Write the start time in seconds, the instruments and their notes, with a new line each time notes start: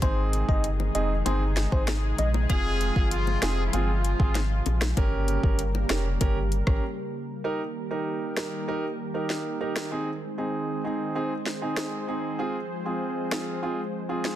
Already playing: analog synth pad D#3
0.02 sub bass G#1, analog synth pad C3 G#3 D#4 G#4, grand piano C4 D#4 G#4, soft synth lead C5, kick, closed hi-hat, high bongo
0.33 closed hi-hat
0.48 sub bass G1, grand piano C4 D#4 G#4, soft synth lead D#5, kick
0.64 closed hi-hat
0.80 high bongo
0.95 sub bass F1, grand piano C4 D#4 G#4, soft synth lead D#5, closed hi-hat
1.26 sub bass G1, grand piano C4 D#4 G#4, soft synth lead C5, closed hi-hat, high bongo
1.57 snare, closed hi-hat
1.72 sub bass G#1, grand piano C4 D#4 G#4, soft synth lead C5, kick
1.87 cross-stick, snare, closed hi-hat, high bongo
2.18 sub bass A#1, soft synth lead D#5, closed hi-hat, low bongo
2.34 high bongo
2.49 sub bass F1, analog synth pad F3 F4, grand piano C4 F4 G#4, horn section G#4, kick, closed hi-hat, high bongo
2.81 closed hi-hat
2.96 sub bass G1, grand piano C4 F4 G#4, kick
3.11 horn section F4, closed hi-hat
3.27 high bongo
3.42 sub bass F1, grand piano C4 F4 G#4, horn section G#4, cross-stick, snare, closed hi-hat
3.66 horn section E4
3.73 sub bass G1, grand piano C4 F4 G#4, horn section F4, closed hi-hat, high bongo
4.05 closed hi-hat
4.20 sub bass G#1, grand piano C4 F4 G#4, kick
4.35 snare, closed hi-hat, high bongo
4.66 sub bass A#1, closed hi-hat, low bongo
4.81 cross-stick, snare, high bongo
4.97 sub bass G1, analog synth pad C#3 G3 A#3 G4 A#4, grand piano C#4 G4 A#4, kick, closed hi-hat, high bongo
5.28 closed hi-hat
5.43 sub bass G1, grand piano C#4 G4 A#4, kick
5.59 closed hi-hat
5.75 high bongo
5.89 sub bass F1, grand piano C#4 G4 A#4, cross-stick, snare, closed hi-hat
6.21 sub bass G1, grand piano C#4 G4 A#4, kick, closed hi-hat, high bongo
6.52 closed hi-hat
6.67 sub bass G#1, grand piano C#4 G4 A#4, kick, cross-stick
7.44 analog synth pad D#3 G3 A#3 G4 A#4, grand piano D#4 G4 A#4
7.91 grand piano D#4 G4 A#4
8.37 grand piano D#4 G4 A#4, cross-stick, snare
8.68 grand piano D#4 G4 A#4
9.14 grand piano D#4 G4 A#4
9.30 snare
9.61 grand piano D#4 G4 A#4
9.76 cross-stick, snare
9.91 analog synth pad G#3 C4 G#4 C5, grand piano C4 D#4 G#4
10.38 grand piano C4 D#4 G#4
10.84 grand piano C4 D#4 G#4
11.15 grand piano C4 D#4 G#4
11.46 snare
11.62 grand piano C4 D#4 G#4
11.77 cross-stick, snare
12.08 grand piano C4 D#4 G#4
12.39 analog synth pad F3 G#3, grand piano C4 F4 G#4
12.85 grand piano C4 F4 G#4
13.32 grand piano C4 F4 G#4, cross-stick, snare
13.63 grand piano C4 F4 G#4
14.09 grand piano C4 F4 G#4
14.25 snare